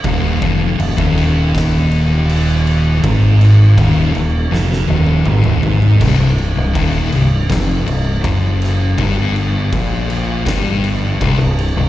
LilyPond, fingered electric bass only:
\new Staff \with { instrumentName = "Fingered electric bass" } { \clef bass \time 4/4 \key c \minor \tempo 4 = 81 ees,,8 f,,8 ees,,16 ees,,2~ ees,,8. | aes,,4 ees,,8 ees,,8 f,,8 ees,,8 aes,,16 ees,,16 aes,,8 | c,,16 c,,8 c,,16 ees,,8 c,,8 f,,8 c,,8 fis,,4 | g,,4 bes,,4 g,,4 c,,16 c,,8 c,,16 | }